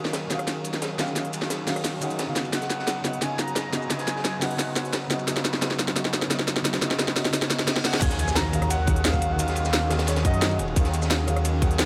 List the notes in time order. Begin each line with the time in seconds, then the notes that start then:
Already playing: D#2 D#3 F#3 C#4 D#4 F#4 G#4 F5
0.05 snare
0.13 snare, closed hi-hat, ride
0.22 snare
0.27 D#2 D#3 C#4 F#4, cross-stick, snare, closed hi-hat, ride, shaker
0.32 G#4 F5
0.39 cross-stick, closed hi-hat
0.47 snare, closed hi-hat, ride
0.64 closed hi-hat, ride, shaker
0.73 snare, closed hi-hat, shaker
0.82 snare, closed hi-hat, ride
0.97 D#3 C#4 F#4 G#4 F5, snare, closed hi-hat, ride, shaker
1.07 snare, shaker
1.13 D#3 C#4 F#4, snare, closed hi-hat, ride
1.18 G#4 F5
1.25 closed hi-hat
1.33 closed hi-hat, ride, shaker
1.42 cross-stick, snare
1.50 snare, closed hi-hat, ride
1.66 D#2 D#3 C#4 F#4 G#4 F5, cross-stick, snare, closed hi-hat, open hi-hat, shaker
1.76 cross-stick, closed hi-hat
1.84 snare, closed hi-hat, ride
2.00 F#2 D#3 C#4 F#4 G#4 F#5, closed hi-hat, ride, shaker
2.10 closed hi-hat, shaker
2.19 snare, closed hi-hat, ride
2.26 C#3 B3 F#4 F5
2.36 C#2 F#3 D#4 B4, snare, closed hi-hat, ride, shaker
2.45 ride, shaker
2.50 C#2 C#3 B3 F#5, snare, closed hi-hat, ride
2.54 F#4 D#5
2.62 snare, closed hi-hat
2.70 snare, closed hi-hat, ride, shaker
2.79 snare
2.87 snare, closed hi-hat, ride
2.97 snare
3.01 C#2 C#3 B3, snare, closed hi-hat, ride, shaker
3.06 F#4 D#5
3.13 closed hi-hat
3.19 C#3 B3 G#5, snare, closed hi-hat, ride
3.23 F#4 D#5
3.39 A#5, snare, closed hi-hat, ride, shaker
3.48 closed hi-hat, shaker
3.56 snare, closed hi-hat, ride
3.70 C#3 B3, snare, closed hi-hat, ride, shaker
3.74 F#4 D#5
3.82 shaker
3.87 C#3 B3 G#5, snare, closed hi-hat, ride
3.92 F#4 D#5
3.99 snare, closed hi-hat
4.07 snare, closed hi-hat, ride, shaker
4.16 snare
4.25 snare, closed hi-hat, ride
4.39 C#2 C#3 B3 F#5, snare, closed hi-hat, open hi-hat, shaker
4.43 F#4 D#5
4.51 closed hi-hat
4.56 C#3 B3, snare, closed hi-hat
4.60 F#4 D#5, ride
4.76 G#1, snare, closed hi-hat, ride, shaker
4.85 closed hi-hat, shaker
4.93 G#1, snare, closed hi-hat, ride
5.07 C#3 B3 C#5, snare, closed hi-hat, ride, shaker
5.12 F#4 D#5
5.19 ride, shaker
5.24 C#2 C#3 B3, snare, closed hi-hat, ride
5.29 F#4 D#5
5.36 snare, closed hi-hat
5.45 snare, closed hi-hat, ride, shaker
5.53 snare
5.59 C#3 B3, snare, closed hi-hat, ride
5.63 F#4 D#5
5.70 snare
5.79 C#2, snare, closed hi-hat, ride, shaker
5.88 snare, closed hi-hat
5.93 C#3 B3, snare, closed hi-hat, ride
5.98 F#4 D#5
6.05 snare
6.13 snare, closed hi-hat, ride, shaker
6.22 snare, closed hi-hat, shaker
6.27 C#3 B3, snare, closed hi-hat, ride
6.32 F#4 D#5
6.39 snare
6.47 snare, closed hi-hat, ride, shaker
6.56 snare, shaker
6.62 C#3 B3, snare, closed hi-hat, ride
6.66 F#4 D#5
6.73 snare, closed hi-hat
6.78 C#3 B3, snare, closed hi-hat, ride, shaker
6.83 F#4 D#5
6.90 snare
6.96 C#3 B3, snare, closed hi-hat, ride
7.00 F#4 D#5
7.08 snare
7.13 C#2 C#3 B3, snare, closed hi-hat, open hi-hat, shaker
7.17 F#4 D#5
7.25 snare, closed hi-hat
7.30 C#3 B3, snare, closed hi-hat, ride, reverse cymbal
7.34 F#4 D#5
7.42 snare, closed hi-hat
7.47 C#3 B3, snare, closed hi-hat, ride, shaker
7.52 F#4 D#5
7.59 snare, closed hi-hat, shaker
7.64 C#3 B3, snare, closed hi-hat, ride
7.69 F#4 D#5
7.76 snare
7.82 F#2 C#3 B3 F#5, snare, closed hi-hat, open hi-hat, shaker
7.86 F#4 D#5
7.93 snare, ride, shaker
7.98 D#2 D#3 F#3 C#4 F#4 G#4 D#5 G#5, kick, closed hi-hat, crash, ride, impact, shaker
8.03 G#4 F5
8.10 snare, closed hi-hat
8.19 closed hi-hat, ride, shaker
8.28 cross-stick, snare, shaker
8.35 A#5, snare, closed hi-hat, ride, shaker
8.45 snare
8.52 D#2 D#3 C#4 F#4 G#4 F5, closed hi-hat, ride, shaker
8.62 cross-stick, closed hi-hat
8.70 F#5, closed hi-hat, ride, shaker
8.86 D#3 C#4 F#4 G#4 F#5, kick, closed hi-hat, ride
8.96 closed hi-hat
9.05 F5, snare, closed hi-hat, ride, shaker
9.12 D#3 C#4 F#4 G#4 F#5, kick, cross-stick, shaker
9.22 closed hi-hat, ride
9.32 D#3 F#5
9.38 C#4 F#4 G#4 F5, closed hi-hat, ride, shaker
9.43 F5
9.48 snare, closed hi-hat
9.56 closed hi-hat, ride, shaker
9.65 snare, shaker
9.73 snare, closed hi-hat, ride, shaker
9.89 D#2 D#3 C#4 F#4 G#4 F5, cross-stick, snare, closed hi-hat, ride, shaker
9.99 snare, closed hi-hat, ride
10.07 C#5, snare, closed hi-hat, ride, shaker
10.16 snare, closed hi-hat, ride
10.24 F#2 D#3 C#4 F#4 G#4 D#5 F#5, kick, closed hi-hat, ride
10.34 closed hi-hat
10.41 snare, closed hi-hat, ride, shaker
10.49 D#3 C#4 F#4 G#4 F#5, shaker
10.59 D#1, closed hi-hat, ride
10.68 ride
10.73 D#2 D#3 C#4 F#4, kick, closed hi-hat, ride, shaker
10.78 G#4 F5
10.84 snare, closed hi-hat
10.94 closed hi-hat, ride, shaker
11.02 cross-stick, snare, shaker
11.11 snare, closed hi-hat, ride, shaker
11.19 snare
11.26 D#2 D#3 C#4 F#4 G#4 F5, cross-stick, closed hi-hat, ride, shaker
11.36 cross-stick, closed hi-hat
11.45 closed hi-hat, ride, shaker
11.61 D#3 C#4 F#4 G#4 F#5, kick, closed hi-hat, ride
11.71 closed hi-hat
11.79 snare, closed hi-hat, ride, shaker